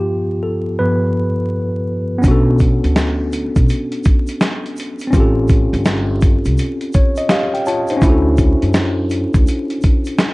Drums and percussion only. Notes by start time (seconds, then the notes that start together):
2.23 kick, closed hi-hat, shaker
2.59 kick, closed hi-hat, shaker
2.84 closed hi-hat
2.96 snare, closed hi-hat, shaker
3.32 closed hi-hat, shaker
3.56 kick, closed hi-hat, shaker
3.69 closed hi-hat, shaker
3.92 closed hi-hat
4.04 kick, closed hi-hat, shaker
4.27 closed hi-hat, shaker
4.41 snare, closed hi-hat, shaker
4.66 closed hi-hat
4.77 closed hi-hat, shaker
4.99 closed hi-hat, shaker
5.13 kick, closed hi-hat, shaker
5.48 kick, closed hi-hat, shaker
5.74 closed hi-hat
5.86 snare, closed hi-hat, shaker
6.21 kick, closed hi-hat, shaker
6.45 closed hi-hat, shaker
6.58 closed hi-hat, shaker
6.81 closed hi-hat
6.93 kick, closed hi-hat, shaker
7.16 closed hi-hat, shaker
7.29 snare, closed hi-hat, shaker
7.55 closed hi-hat
7.66 closed hi-hat, shaker
7.88 closed hi-hat, shaker
8.02 kick, closed hi-hat, shaker
8.37 kick, closed hi-hat, shaker
8.62 closed hi-hat
8.74 snare, closed hi-hat, shaker
9.10 closed hi-hat, shaker
9.34 kick, closed hi-hat, shaker
9.47 closed hi-hat, shaker
9.70 closed hi-hat
9.82 kick, closed hi-hat, shaker
10.05 closed hi-hat, shaker
10.19 snare, closed hi-hat, shaker